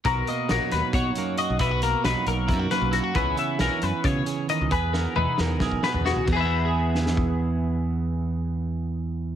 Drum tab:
CC |--------------|--------------|--------------|--------------|
HH |x-x-x-x-x-x-x-|x-x-x-x-x-x-x-|x-x-x-x-x-x-x-|x-------------|
SD |----o-o-------|----o-----o---|----o---------|--o---o-o-o-o-|
T1 |--------------|--------------|--------------|----o---------|
FT |--------------|--------------|--------------|-----------o-o|
BD |o-------o-----|o-------o-----|o-------o-----|o-------oo----|

CC |x-------------|--------------|
HH |--------------|--------------|
SD |------oo------|--------------|
T1 |--------------|--------------|
FT |--------------|--------------|
BD |o-------o-----|--------------|